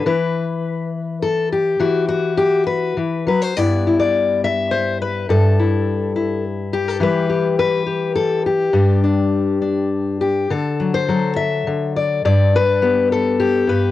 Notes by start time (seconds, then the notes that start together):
Already playing: E4
0.06 E3 B4
1.23 A4
1.52 G4
1.80 E3 F#4
2.09 F#4
2.37 G4
2.67 B4
2.97 E3
3.27 F#3 B4
3.42 C5
3.56 G2 B3 E4 D5
3.87 E4
3.99 D5
4.44 E5
4.71 C5
5.02 B4
5.29 G2 A4
5.59 E4
6.16 E4
6.73 G4
6.88 A4
7.00 E3 G3 G4 B4
7.29 G4
7.59 B4
7.86 G4
8.16 A4
8.46 G4
8.73 G2 G3 D4
9.04 D4
9.62 D4
10.21 G4
10.50 D3 A4
10.80 F#3
10.94 C5
11.08 F#3 A4
11.36 E5
11.67 D3
11.96 D5
12.25 G2 D5
12.56 B4
12.82 B3 G4
13.12 A4
13.40 G4
13.67 G2 B4